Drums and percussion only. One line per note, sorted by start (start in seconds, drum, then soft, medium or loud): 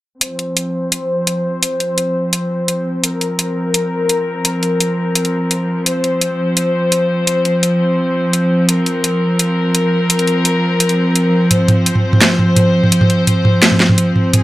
0.21 closed hi-hat medium
0.39 closed hi-hat soft
0.57 closed hi-hat medium
0.92 closed hi-hat medium
1.27 closed hi-hat medium
1.63 closed hi-hat medium
1.80 closed hi-hat soft
1.98 closed hi-hat medium
2.33 closed hi-hat medium
2.68 closed hi-hat medium
3.04 closed hi-hat medium
3.21 closed hi-hat soft
3.39 closed hi-hat medium
3.74 closed hi-hat medium
4.09 closed hi-hat medium
4.45 closed hi-hat medium
4.63 closed hi-hat soft
4.80 closed hi-hat medium
5.15 closed hi-hat medium
5.25 closed hi-hat soft
5.51 closed hi-hat medium
5.86 closed hi-hat medium
6.04 closed hi-hat soft
6.21 closed hi-hat medium
6.57 closed hi-hat medium
6.92 closed hi-hat medium
7.27 closed hi-hat medium
7.45 closed hi-hat soft
7.63 closed hi-hat medium
8.33 closed hi-hat medium
8.69 closed hi-hat medium
8.86 closed hi-hat soft
9.04 closed hi-hat medium
9.39 closed hi-hat medium
9.75 closed hi-hat medium
10.10 closed hi-hat medium
10.19 closed hi-hat soft
10.27 closed hi-hat soft
10.45 closed hi-hat medium
10.80 closed hi-hat medium
10.89 closed hi-hat soft
11.15 closed hi-hat medium
11.51 closed hi-hat medium
11.51 mid tom medium
11.68 closed hi-hat soft
11.68 mid tom medium
11.86 closed hi-hat medium
11.95 mid tom medium
12.13 mid tom medium
12.21 snare loud
12.21 closed hi-hat medium
12.39 mid tom medium
12.56 closed hi-hat medium
12.56 mid tom medium
12.83 mid tom medium
12.92 closed hi-hat medium
13.01 mid tom medium
13.10 closed hi-hat soft
13.27 closed hi-hat medium
13.27 mid tom medium
13.45 mid tom medium
13.62 snare loud
13.62 closed hi-hat medium
13.72 mid tom medium
13.80 snare medium
13.89 mid tom medium
13.98 closed hi-hat medium
14.16 mid tom soft
14.34 closed hi-hat medium
14.34 mid tom medium